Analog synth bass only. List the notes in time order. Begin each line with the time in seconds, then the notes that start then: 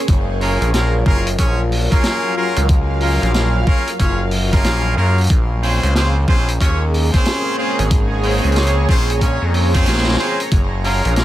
0.08 F#1
0.61 A#1
1.06 F#1
1.39 A#1
2.57 C#2
3.22 A#1
4.00 F#1
4.65 A#1
4.97 F#2
5.30 A#1
5.83 C#2
6.28 A#1
6.61 D#2
7.79 G#1
8.44 C#2
8.89 A#1
9.42 F2
9.86 A#1
10.52 F#1
11.05 A#1